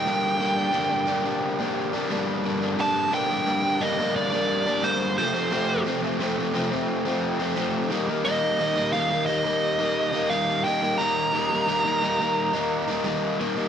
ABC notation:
X:1
M:4/4
L:1/16
Q:1/4=88
K:Gm
V:1 name="Lead electric guitar"
g12 z4 | a2 g4 e2 d4 c2 c2- | c2 z12 z2 | e4 f2 e6 f2 g2 |
b12 z4 |]
V:2 name="Overdriven electric guitar"
[G,,D,G,B,D]2 [D,G,B,D] [G,B,D] [G,,D,G,B,D] [G,B,D] [D,G,B,D] [G,B,D]2 [G,B,D]2 [G,B,D] [G,,D,G,B,D]2 [D,G,B,D] [G,B,D] | [G,,D,G,B,D]2 [D,G,B,D] [G,B,D] [G,,D,G,B,D] [G,B,D] [D,G,B,D] [G,B,D]2 [G,B,D]2 [G,B,D] [G,,D,G,B,D]2 [F,,C,F,A,C] [F,A,C] | [F,,C,F,A,C]2 [C,F,A,C] [F,A,C] [F,,C,F,A,C] [F,A,C] [C,F,A,C] [F,A,C]2 [F,A,C]2 [F,A,C] [F,,C,F,A,C]2 [E,G,B,E] [G,B,E] | [E,G,B,E]2 [E,G,B,E] [G,B,E] [E,G,B,E] [G,B,E] [E,G,B,E] [G,B,E]2 [G,B,E]2 [G,B,E] [E,G,B,E]2 [E,G,B,E] [G,B,E] |
[E,G,B,E]2 [E,G,B,E] [G,B,E] [E,G,B,E] [G,B,E] [E,G,B,E] [G,B,E]2 [G,B,E]2 [G,B,E] [E,G,B,E]2 [E,G,B,E] [G,B,E] |]